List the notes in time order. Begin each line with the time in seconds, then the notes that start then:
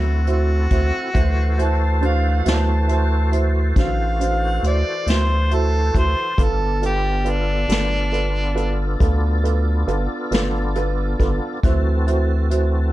Already playing: D2 C4 E4 F#4 A4 C5
0.27 E4 F#4 C5, closed hi-hat
0.32 F#4
0.71 D2 E4 F#4 C5, kick, closed hi-hat
1.13 D2 E3 E4 F#4 A4 C5, kick, closed hi-hat
1.58 E4 F#4 C5 A5, closed hi-hat
2.01 D4 F#4 C5, closed hi-hat
2.05 F5
2.44 D2 E4 F#4 C5, closed hi-hat
2.48 D5 F5 A5, snare
2.87 E4 F#4 C5, closed hi-hat
2.92 A5
3.32 E4 F#4 C5, closed hi-hat
3.76 A1 D4 F#4 C5 F5, kick, snare, closed hi-hat
4.19 D4 F#4 C5, closed hi-hat
4.63 D2 E4 F#4 C5, closed hi-hat
4.68 D5
5.07 D2 E4 F#4 C5, snare, closed hi-hat
5.51 E4 F#4 A4 C5, closed hi-hat
5.94 D2 E4 F#4 C5, kick, closed hi-hat
5.98 C5
6.37 G1 B3 D4 F4 A4 B4, kick, closed hi-hat
6.43 A4
6.81 F4 A4 B4, closed hi-hat
6.86 G4
7.24 F4 A4 B4, closed hi-hat
7.30 D4
7.68 G1 F4 A4 B4, snare, closed hi-hat
8.12 F4 A4 B4, closed hi-hat
8.55 F4 A4 B4, closed hi-hat
9.00 D2 F4 A4 B4, kick, closed hi-hat
9.43 F4 A4 B4, closed hi-hat
9.87 G1 F4 A4 B4, closed hi-hat
10.31 G1 F4 A4 B4, snare, closed hi-hat
10.75 F4 A4 B4, closed hi-hat
11.19 G1 F4 A4 B4, kick, closed hi-hat
11.63 D2 E3 C4 E4 F#4 A4 C5, kick, closed hi-hat
12.06 E4 F#4 C5, closed hi-hat
12.50 E4 F#4 C5, closed hi-hat